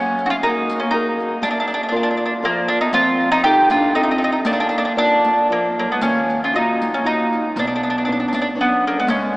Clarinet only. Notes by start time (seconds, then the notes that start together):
Already playing: A#3
0.26 C#4 D#4
0.43 A#3
0.82 A#3
0.94 A#3
1.44 A#3
2.45 F3
2.70 A#3
2.81 B3
2.93 C4
3.32 C4
3.44 D#4
3.71 D4
3.95 C4
4.47 A#3
4.97 A#3
5.50 F3
5.78 F#3
5.90 G#3
6.04 A#3
6.43 C#4
6.56 A#3
6.95 A#3
7.07 A#3
7.58 B3
8.59 F#3
8.86 F#3
8.98 G#3
9.11 G#3